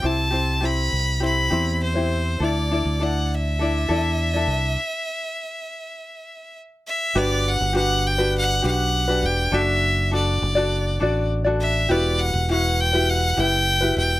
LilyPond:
<<
  \new Staff \with { instrumentName = "Violin" } { \time 4/4 \key g \major \tempo 4 = 101 a''4 b''4 b''4 c''4 | d''4 fis''8 e''2~ e''8~ | e''2. r8 e''8 | d''8 fis''8 fis''8 g''8 fis''8 fis''4 g''8 |
e''4 d''2 r8 e''8 | d''8 fis''8 fis''8 g''8 fis''8 g''4 g''8 | }
  \new Staff \with { instrumentName = "Ukulele" } { \time 4/4 \key g \major <c' e' g' c''>8 <c' e' g' c''>8 <c' e' g' c''>4 <c' e' g' c''>8 <c' e' g' c''>8. <c' e' g' c''>8. | <d' e' a' d''>8 <d' e' a' d''>8 <d' e' a' d''>4 <d' e' a' d''>8 <d' e' a' d''>8. <d' e' a' d''>8. | r1 | <d' fis' g' b'>4 <d' fis' g' b'>8. <d' fis' g' b'>8. <d' fis' g' b'>8. <d' fis' g' b'>8. |
<d' fis' a' d''>4 <d' fis' a' d''>8. <d' fis' a' d''>8. <d' fis' a' d''>8. <d' fis' a' d''>8. | <e' fis' g' b'>4 <e' fis' g' b'>8. <e' fis' g' b'>8. <e' g' b'>8. <e' fis' g' b'>8. | }
  \new Staff \with { instrumentName = "Fingered electric bass" } { \clef bass \time 4/4 \key g \major c,4. c,4 e,4. | d,8. d,4.~ d,16 e,4 c,8 | r1 | g,,8. g,,4.~ g,,16 b,,4 e,,8 |
fis,,4. fis,,4 a,,4. | e,,8. e,,4.~ e,,16 fis,,4 e,,8 | }
>>